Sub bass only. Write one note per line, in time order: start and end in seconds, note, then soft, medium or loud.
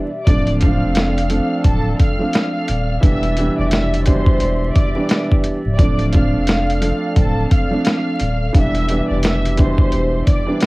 0.27 0.84 D1 loud
0.83 1.40 F1 medium
1.65 1.93 D1 medium
2.69 2.97 D#1 medium
3.03 3.49 E1 loud
3.59 4.15 F1 medium
4.42 4.70 E1 loud
5.66 5.77 C#1 loud
5.79 6.36 D1 loud
6.35 6.91 F1 medium
7.17 7.45 D1 medium
8.21 8.49 D#1 medium
8.55 9.00 E1 loud
9.10 9.67 F1 medium
9.93 10.22 E1 medium